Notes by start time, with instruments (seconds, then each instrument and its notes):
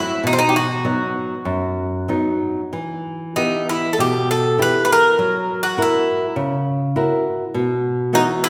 Already playing: nylon-string guitar F#3 A3 C4, bouzouki E4
0.24 nylon-string guitar B2, bouzouki D#4
0.33 bouzouki C4
0.39 bouzouki D#4
0.49 bouzouki G4
0.56 bouzouki F#4
0.85 nylon-string guitar F#3 B3 D#4
1.45 nylon-string guitar F#2
2.08 nylon-string guitar F#3 B3 D#4
2.73 nylon-string guitar E3
3.36 nylon-string guitar E3 B3 G4, bouzouki D#4
3.69 bouzouki E4
3.93 bouzouki A4
3.98 nylon-string guitar B2, bouzouki G4
4.31 bouzouki A4
4.58 nylon-string guitar B3 E4 G4
4.62 bouzouki B4
4.85 bouzouki B4
4.92 bouzouki A#4
5.19 nylon-string guitar F#3
5.63 bouzouki F#4
5.77 nylon-string guitar E4 F#4 A#4
5.82 bouzouki E4
6.36 nylon-string guitar C#3
6.96 nylon-string guitar E4 F#4 A#4
7.54 nylon-string guitar B2
8.13 nylon-string guitar E3 B3 F#4, bouzouki D#4
8.44 bouzouki E4